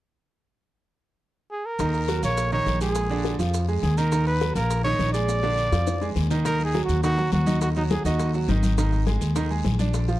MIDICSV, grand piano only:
0, 0, Header, 1, 2, 480
1, 0, Start_track
1, 0, Key_signature, -6, "minor"
1, 0, Tempo, 290980
1, 1038, Time_signature, 4, 2, 24, 8
1, 16818, End_track
2, 0, Start_track
2, 0, Title_t, "Grand piano"
2, 0, Program_c, 0, 0
2, 2952, Note_on_c, 0, 51, 65
2, 2958, Note_on_c, 0, 63, 72
2, 3349, Note_off_c, 0, 51, 0
2, 3352, Note_off_c, 0, 63, 0
2, 3429, Note_on_c, 0, 54, 57
2, 3437, Note_on_c, 0, 66, 60
2, 3630, Note_off_c, 0, 54, 0
2, 3635, Note_off_c, 0, 66, 0
2, 3675, Note_on_c, 0, 58, 67
2, 3680, Note_on_c, 0, 70, 64
2, 4071, Note_off_c, 0, 58, 0
2, 4073, Note_off_c, 0, 70, 0
2, 4162, Note_on_c, 0, 51, 79
2, 4166, Note_on_c, 0, 63, 74
2, 4555, Note_off_c, 0, 51, 0
2, 4557, Note_off_c, 0, 63, 0
2, 4638, Note_on_c, 0, 56, 66
2, 4642, Note_on_c, 0, 68, 69
2, 5033, Note_off_c, 0, 56, 0
2, 5035, Note_off_c, 0, 68, 0
2, 5118, Note_on_c, 0, 50, 78
2, 5121, Note_on_c, 0, 62, 80
2, 5512, Note_off_c, 0, 50, 0
2, 5514, Note_off_c, 0, 62, 0
2, 5597, Note_on_c, 0, 53, 66
2, 5605, Note_on_c, 0, 65, 62
2, 5992, Note_off_c, 0, 53, 0
2, 5996, Note_off_c, 0, 65, 0
2, 6077, Note_on_c, 0, 56, 61
2, 6081, Note_on_c, 0, 68, 64
2, 6472, Note_off_c, 0, 56, 0
2, 6474, Note_off_c, 0, 68, 0
2, 6561, Note_on_c, 0, 51, 78
2, 6565, Note_on_c, 0, 63, 79
2, 6758, Note_off_c, 0, 51, 0
2, 6760, Note_off_c, 0, 63, 0
2, 6797, Note_on_c, 0, 51, 71
2, 6805, Note_on_c, 0, 63, 69
2, 7192, Note_off_c, 0, 51, 0
2, 7197, Note_off_c, 0, 63, 0
2, 7285, Note_on_c, 0, 54, 63
2, 7291, Note_on_c, 0, 66, 61
2, 7480, Note_off_c, 0, 54, 0
2, 7483, Note_off_c, 0, 66, 0
2, 7529, Note_on_c, 0, 58, 74
2, 7532, Note_on_c, 0, 70, 67
2, 7919, Note_off_c, 0, 58, 0
2, 7921, Note_off_c, 0, 70, 0
2, 8003, Note_on_c, 0, 51, 77
2, 8007, Note_on_c, 0, 63, 80
2, 8396, Note_off_c, 0, 51, 0
2, 8398, Note_off_c, 0, 63, 0
2, 8479, Note_on_c, 0, 56, 65
2, 8483, Note_on_c, 0, 68, 65
2, 8874, Note_off_c, 0, 56, 0
2, 8876, Note_off_c, 0, 68, 0
2, 8955, Note_on_c, 0, 50, 79
2, 8961, Note_on_c, 0, 62, 82
2, 9351, Note_off_c, 0, 50, 0
2, 9355, Note_off_c, 0, 62, 0
2, 9439, Note_on_c, 0, 53, 67
2, 9445, Note_on_c, 0, 65, 64
2, 9833, Note_off_c, 0, 53, 0
2, 9837, Note_off_c, 0, 65, 0
2, 9921, Note_on_c, 0, 56, 68
2, 9925, Note_on_c, 0, 68, 65
2, 10314, Note_off_c, 0, 56, 0
2, 10317, Note_off_c, 0, 68, 0
2, 10406, Note_on_c, 0, 51, 78
2, 10411, Note_on_c, 0, 63, 78
2, 10601, Note_off_c, 0, 51, 0
2, 10604, Note_off_c, 0, 63, 0
2, 10644, Note_on_c, 0, 51, 74
2, 10649, Note_on_c, 0, 63, 72
2, 11037, Note_off_c, 0, 51, 0
2, 11040, Note_off_c, 0, 63, 0
2, 11124, Note_on_c, 0, 54, 66
2, 11126, Note_on_c, 0, 66, 60
2, 11516, Note_off_c, 0, 54, 0
2, 11518, Note_off_c, 0, 66, 0
2, 11602, Note_on_c, 0, 51, 72
2, 11605, Note_on_c, 0, 63, 67
2, 11799, Note_off_c, 0, 51, 0
2, 11800, Note_off_c, 0, 63, 0
2, 11836, Note_on_c, 0, 54, 70
2, 11841, Note_on_c, 0, 66, 73
2, 12232, Note_off_c, 0, 54, 0
2, 12234, Note_off_c, 0, 66, 0
2, 12320, Note_on_c, 0, 75, 70
2, 12321, Note_on_c, 0, 63, 71
2, 12714, Note_off_c, 0, 63, 0
2, 12714, Note_off_c, 0, 75, 0
2, 12807, Note_on_c, 0, 54, 69
2, 12808, Note_on_c, 0, 66, 69
2, 13198, Note_off_c, 0, 54, 0
2, 13198, Note_off_c, 0, 66, 0
2, 13288, Note_on_c, 0, 63, 69
2, 13296, Note_on_c, 0, 75, 76
2, 13678, Note_off_c, 0, 63, 0
2, 13682, Note_off_c, 0, 75, 0
2, 13766, Note_on_c, 0, 54, 67
2, 13774, Note_on_c, 0, 66, 67
2, 13960, Note_off_c, 0, 54, 0
2, 13965, Note_off_c, 0, 66, 0
2, 14006, Note_on_c, 0, 51, 74
2, 14010, Note_on_c, 0, 63, 76
2, 14396, Note_off_c, 0, 51, 0
2, 14398, Note_off_c, 0, 63, 0
2, 14483, Note_on_c, 0, 51, 70
2, 14491, Note_on_c, 0, 63, 75
2, 14874, Note_off_c, 0, 51, 0
2, 14879, Note_off_c, 0, 63, 0
2, 14956, Note_on_c, 0, 56, 70
2, 14961, Note_on_c, 0, 68, 64
2, 15350, Note_off_c, 0, 56, 0
2, 15352, Note_off_c, 0, 68, 0
2, 15440, Note_on_c, 0, 51, 76
2, 15443, Note_on_c, 0, 63, 74
2, 15635, Note_off_c, 0, 51, 0
2, 15637, Note_off_c, 0, 63, 0
2, 15678, Note_on_c, 0, 56, 65
2, 15680, Note_on_c, 0, 68, 70
2, 16070, Note_off_c, 0, 56, 0
2, 16071, Note_off_c, 0, 68, 0
2, 16155, Note_on_c, 0, 62, 73
2, 16164, Note_on_c, 0, 74, 70
2, 16548, Note_off_c, 0, 62, 0
2, 16553, Note_off_c, 0, 74, 0
2, 16635, Note_on_c, 0, 53, 68
2, 16637, Note_on_c, 0, 65, 64
2, 16818, Note_off_c, 0, 53, 0
2, 16818, Note_off_c, 0, 65, 0
2, 16818, End_track
0, 0, End_of_file